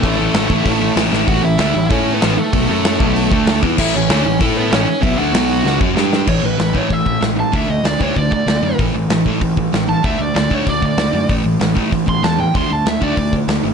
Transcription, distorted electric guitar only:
\new Staff \with { instrumentName = "Distorted electric guitar" } { \clef bass \time 4/4 \key a \major \tempo 4 = 192 <a, e a cis' e'>8 <a, e a cis' e'>8 <a, e a cis' e'>8 <a, e a cis' e'>8 <a, e a cis' e'>8 <a, e a cis' e'>8 <a, e a cis' e'>8 <a, e a cis' e'>8 | <a, e a>8 <a, e>8 <d a d'>8 <a, e>8 <a e' a'>4 <a, e a>8 r8 | <b, fis b>8 <fis cis' fis'>4 <b, fis b>4 <d a d'>4 <e b e'>8 | <a, e a>8 <a, e>8 <d a d'>8 <a, e>8 <a e' a'>4 <a, e a>8 r8 |
<b, fis b>8 <d a d'>8 <b, fis b>4 <cis gis cis'>8 <fis cis' fis'>8 <g d' g'>4 | <a, e a>8 <a, e>8 <a, e>8 <a, e a>8 <a, e>8 <a, e>8 <a, e>8 <a, e>8 | <d a d'>8 <d a>8 <d a>8 <d a d'>8 <d a>8 <d a>8 <d a>8 <d a>8 | <a, e a>8 <a, e>8 <a, e>8 <a, e a>8 <a, e>8 <a, e>8 <a, e>8 <a, e>8 |
<d a d'>8 <d a>8 <d a>8 <d a d'>8 <d a>8 <d a>8 <d a>8 <d a>8 | <a, e a>8 <a, e>8 <a, e>8 <a, e a>8 <a, e>8 <a, e>8 <a, e>8 <a, e>8 | <d a d'>8 <d a>8 <d a>8 <d a d'>8 <d a>8 <d a>8 <d a>8 <d a>8 | }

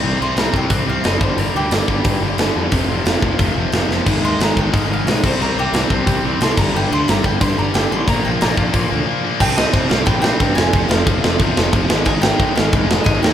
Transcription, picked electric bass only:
\new Staff \with { instrumentName = "Picked electric bass" } { \clef bass \time 4/4 \key c \minor \tempo 4 = 180 c,8 c,8 c,8 c,8 c,8 c,8 fis,,8 g,,8 | g,,8 d,8 g,,8 g,,8 g,8 g,,8 g,,8 f,8 | f,,8 f,,8 f,,8 f,,8 f,,8 f,,8 f,,8 f,,8 | aes,,8 ees,8 aes,,8 aes,,8 aes,8 aes,,8 b,,8 c,8 |
c,8 c,8 c,8 c,8 c,8 c,8 c,8 g,,8 | g,,8 d,8 g,,8 g,,8 g,8 g,,8 g,,8 a,,8 | bes,,8 bes,,8 bes,,8 bes,,8 bes,,8 d,8 r4 | c,4 c8 c,8 bes,,4 g,8 f,,8 |
f,,8 f,,8 f,,8 f,,8 f,,8 f,,8 f,,8 aes,,8 | aes,,4 aes,8 aes,,8 f,,4 aes,,8 ees,8 | }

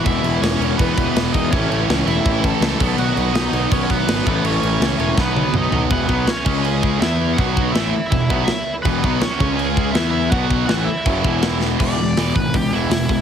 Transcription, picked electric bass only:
\new Staff \with { instrumentName = "Picked electric bass" } { \clef bass \time 4/4 \key e \major \tempo 4 = 163 e,,8 e,,8 e,,8 e,,8 e,,8 e,,8 e,,8 e,8 | a,,8 a,,8 cis,8 e,,8 a,,4 cis,8 b,,8 | b,,8 b,,8 b,,8 b,,8 b,,8 b,,8 gis,,8 a,,8 | a,,8 a,,8 cis,8 e,,8 b,,4 b,,8 b,,8 |
e,,8 b,,8 r8 cis,4. e,4 | b,,4 a,,8 r8 e,,8 b,,8 r4 | e,,8 b,,8 r8 cis,4. e,4 | b,,4 a,,8 r8 fis,,8 e,,4. |
e,,8 e,,8 e,,8 gis,,8 cis,8 e,,8 e,,8 e,,8 | }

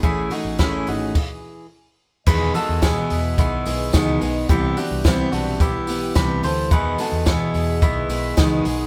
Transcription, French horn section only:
\new Staff \with { instrumentName = "French horn section" } { \time 4/4 \key e \major \tempo 4 = 108 r1 | <e gis' dis''>1 | <e b e'>1 | <e gis' dis''>1 | }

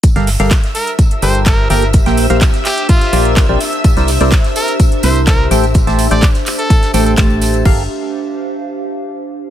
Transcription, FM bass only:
\new Staff \with { instrumentName = "FM bass" } { \clef bass \time 4/4 \key g \dorian \tempo 4 = 126 r16 g,,8 g,,16 r4. g,,4 g,,8~ | g,,16 bes,,8 bes,,16 r4. bes,,8. bes,,16 r8 | r16 c,8 c,16 r4. c,4 a,,8~ | a,,16 a,,8 a,,16 r4. a,,8 a,,4 |
g,,8 r2. r8 | }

